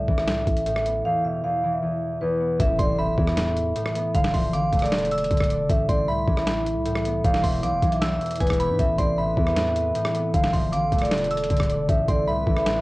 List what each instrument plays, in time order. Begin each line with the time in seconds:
Already playing: harp A2 A3 D5, vibraphone E5
0.08 808-style bass A1, harp E3, kick
0.18 vibraphone E5, cross-stick
0.27 808-style bass C2, harp A2, snare, closed hi-hat
0.47 808-style bass A1, kick, closed hi-hat
0.57 closed hi-hat
0.66 harp A2, closed hi-hat
0.76 cross-stick
0.86 harp B3, closed hi-hat
1.05 harp E2, vibraphone F5
1.24 harp B2, vibraphone E5
1.44 harp E2, vibraphone F5
1.63 harp E3
1.73 vibraphone E5
1.82 harp E2
2.21 harp E2, vibraphone B4
2.40 harp B3
2.59 808-style bass A1, harp A2, vibraphone E5, kick, closed hi-hat, impact
2.79 808-style bass A1, harp C3, vibraphone D5, synth bell C6, kick, closed hi-hat
2.99 harp A2, vibraphone E5, synth bell B5
3.18 808-style bass E2, harp E3, kick
3.27 vibraphone E5, cross-stick
3.37 harp A2, snare, closed hi-hat
3.57 closed hi-hat
3.76 harp A2, closed hi-hat
3.86 cross-stick
3.95 harp B3, closed hi-hat
4.15 808-style bass D1, harp D3, vibraphone F5, kick, closed hi-hat
4.24 snare
4.34 808-style bass D1, harp F3, vibraphone E5, synth bell C6, kick, open hi-hat
4.53 808-style bass A1, harp D3, vibraphone F5, synth bell D6, closed hi-hat
4.73 808-style bass D1, harp A3, kick, closed hi-hat
4.79 vibraphone D5, cross-stick, closed hi-hat
4.86 closed hi-hat
4.92 harp D3, snare, closed hi-hat
4.99 808-style bass E1, closed hi-hat
5.05 closed hi-hat
5.11 synth bell E6, closed hi-hat
5.18 closed hi-hat
5.24 closed hi-hat
5.31 808-style bass D1, harp D3, kick, closed hi-hat
5.37 808-style bass D1, kick, cross-stick, closed hi-hat
5.44 closed hi-hat
5.50 harp D5, closed hi-hat
5.60 808-style bass F1
5.69 808-style bass A1, harp A2, vibraphone E5, kick, closed hi-hat
5.89 808-style bass A1, harp C3, vibraphone D5, synth bell C6, kick, closed hi-hat
6.08 808-style bass C2, harp A2, vibraphone E5, synth bell B5
6.27 808-style bass A1, harp E3, kick
6.37 vibraphone E5, cross-stick
6.47 harp A2, snare, closed hi-hat
6.66 closed hi-hat
6.76 808-style bass C2
6.85 harp A2, closed hi-hat
6.95 cross-stick
7.05 harp B3, closed hi-hat
7.24 808-style bass E1, harp E2, vibraphone F5, kick, closed hi-hat
7.34 snare
7.43 808-style bass E1, harp B2, synth bell C6, kick, open hi-hat
7.63 808-style bass B1, harp E2, vibraphone F5, synth bell D6, closed hi-hat
7.73 808-style bass E1
7.82 808-style bass B1, harp E3, kick, closed hi-hat
7.92 vibraphone E5, closed hi-hat
8.01 harp E2, synth bell E6, snare, closed hi-hat
8.21 closed hi-hat
8.26 closed hi-hat
8.31 closed hi-hat
8.36 closed hi-hat
8.40 808-style bass E1, harp E2, vibraphone B4, synth bell G#5, kick, closed hi-hat
8.47 808-style bass E1, kick, cross-stick, closed hi-hat
8.53 closed hi-hat
8.60 harp B3, synth bell B5, closed hi-hat
8.69 808-style bass G#2
8.79 808-style bass A1, harp A2, ambient pad E3 C4 A4 B4, vibraphone E5, kick, closed hi-hat
8.98 808-style bass A1, harp C3, vibraphone D5, synth bell C6, kick, closed hi-hat
9.18 harp A2, vibraphone E5, synth bell B5
9.37 808-style bass E2, harp E3, kick
9.47 vibraphone E5, cross-stick
9.57 harp A2, snare, closed hi-hat
9.76 closed hi-hat
9.95 harp A2, closed hi-hat
10.05 cross-stick
10.14 harp B3, closed hi-hat
10.34 808-style bass D1, ambient pad D3 A3 F4, harp D3, vibraphone F5, kick, closed hi-hat
10.44 snare
10.53 808-style bass D1, harp F3, synth bell C6, kick, open hi-hat
10.72 808-style bass A1, harp D3, vibraphone F5, synth bell D6, closed hi-hat
10.92 808-style bass D1, harp A3, kick, closed hi-hat
10.99 vibraphone D5, cross-stick, closed hi-hat
11.05 closed hi-hat
11.11 harp D3, snare, closed hi-hat
11.18 808-style bass E1, closed hi-hat
11.24 closed hi-hat
11.31 synth bell E6, closed hi-hat
11.37 closed hi-hat
11.44 closed hi-hat
11.50 808-style bass D1, harp D3, kick, closed hi-hat
11.57 808-style bass D1, kick, cross-stick, closed hi-hat
11.63 closed hi-hat
11.69 harp D5, closed hi-hat
11.79 808-style bass F1
11.88 808-style bass A1, harp A2, ambient pad E3 C4 B4, vibraphone E5, kick, closed hi-hat
12.08 808-style bass A1, harp C3, vibraphone D5, synth bell C6, kick, closed hi-hat
12.27 808-style bass C2, harp A2, vibraphone E5, synth bell B5
12.47 808-style bass A1, harp E3, kick
12.57 vibraphone E5, cross-stick
12.66 harp A2, snare, closed hi-hat